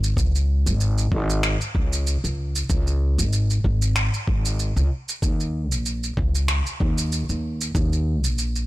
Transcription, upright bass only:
Already playing: G#1
0.17 C#2
0.66 G#1
1.12 G#1
1.75 C#2
2.24 C#2
2.70 C#2
3.18 G#1
3.64 G#1
4.28 G#1
4.76 C#2
5.22 D#2
5.72 A#1
6.17 C#2
6.80 D#2
7.29 D#2
7.75 D#2
8.25 A#1

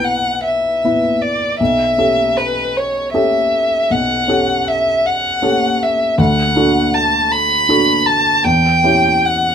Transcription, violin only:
0.04 F#5
0.45 E5
1.22 D5
1.60 E5
2.38 B4
2.77 C#5
3.14 E5
3.91 F#5
4.68 E5
5.06 F#5
5.83 E5
6.21 F#5
6.94 A5
7.32 B5
8.07 A5
8.45 G5
9.26 F#5

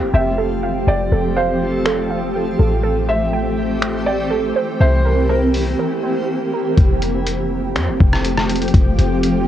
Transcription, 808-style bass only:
0.01 F1
0.13 F1
0.87 F1
1.12 F1
2.59 A1
4.81 C2
6.77 F1
7.76 F2
7.88 F1
8.00 F1
8.74 F1
8.99 F1

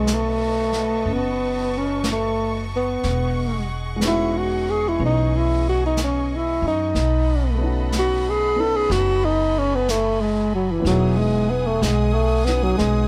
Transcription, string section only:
Already playing: B4 D#5 A5 C#6
3.01 G#4 D#5 F#5
4.98 G#5
6.95 A4 F#5 B5
8.90 G#5
10.85 G#4 F#5 G#5 D#6

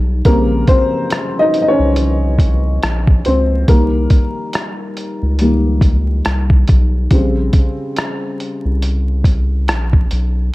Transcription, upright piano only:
Already playing: D#3 G3 A#3
0.26 C#3 G3 A#3 C4 A#4
0.68 C4 C5
1.39 D#4 D#5
1.62 D#5
1.68 C#4 C#5
3.26 C4 C5
3.69 D#3 G3 A#3 A#4
5.41 D#3 G3 A#3
7.12 C#3 G3 C4

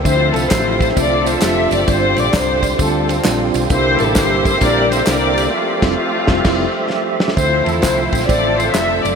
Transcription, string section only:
0.05 E4 F4 C5
0.33 A4
0.51 C5
0.81 C5
0.97 F4 A4 D5
1.26 C5
1.42 E5
1.72 D5
1.89 F4 C5
2.18 D5
2.33 F4 C5
2.80 C4 F4 A4
3.71 E4 G4 C5
4.00 A4
4.18 C5
4.46 C5
4.61 G4 A#4 D5
4.92 C5
5.07 G4 A#4 D5
5.53 A3 C4 F4
7.37 E4 F4 C5
7.66 A4
7.82 C5
8.10 C5
8.27 F4 A4 D5
8.56 C5
8.71 E5
9.02 D5

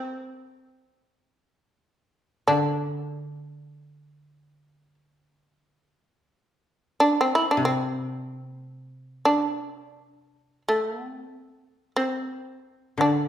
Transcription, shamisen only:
Already playing: C4
2.48 D4
7.00 D4
7.21 C4
7.35 E4
7.51 D4
7.65 C4
8.40 B3
8.53 A#3
8.66 A3
9.25 D4
10.69 A3
11.08 C4
11.96 C4
13.01 D4

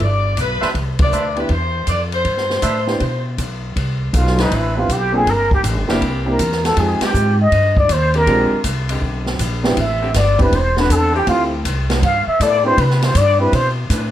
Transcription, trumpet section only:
0.61 D4 B4 C5 E5
1.11 D4 B4 C5 E5
2.62 D4 B4 C5 E5

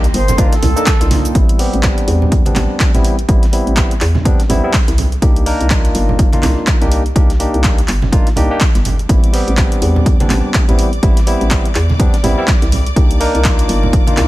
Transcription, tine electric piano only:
0.38 A#3 D4 D#4 F4
0.76 A#3 D4 D#4 A4
1.00 A#3 D4 D#4 F4
1.35 G3 B3 C4 E4
1.59 G3 B3 C4 G4
1.83 G3 B3 C4 D4
2.46 G3 B3 C4 D4
2.94 G3 B3 C4 E4
3.28 G3 B3 C4 E4
3.52 G3 B3 C4 E4
3.77 G3 B3 C4 E4
4.25 G3 B3 C4 D4
4.49 G3 B3 C4 E4
4.63 G3 B3 C4 E4
5.22 A#3 D4 D#4 G4
5.46 A#3 D4 D#4 A#4
5.72 F4
6.33 A#3 D4 D#4 F4
6.81 A#3 D4 D#4 G4
7.15 A#3 D4 D#4 G4
7.39 A#3 D4 D#4 G4
7.64 A#3 D4 D#4 G4
8.12 A#3 D4 D#4 F4
8.36 A#3 D4 D#4 G4
8.50 A#3 D4 D#4 G4
9.09 G3 B3 C4 E4
9.33 G3 B3 C4 G4
9.57 G3 B3 C4 D4
10.20 G3 B3 C4 D4
10.68 G3 B3 C4 E4
11.02 G3 B3 C4 E4
11.27 G3 B3 C4 E4
11.51 G3 C4
11.99 G3 B3 C4 D4
12.23 G3 B3 C4 E4
12.38 G3 B3 C4 E4
12.96 A#3 D4 D#4 G4
13.20 A#3 D4 D#4 A#4
13.44 A#3 D#4 F4
14.07 A#3 D4 D#4 F4

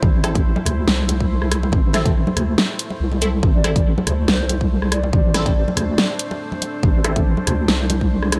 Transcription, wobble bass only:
0.03 A1
0.66 D2
0.88 C2
1.73 A1
2.37 D2
3.00 C2
3.43 A1
4.07 D2
4.28 C2
5.13 A1
5.77 D2
6.83 A1
7.47 D2
7.68 C2

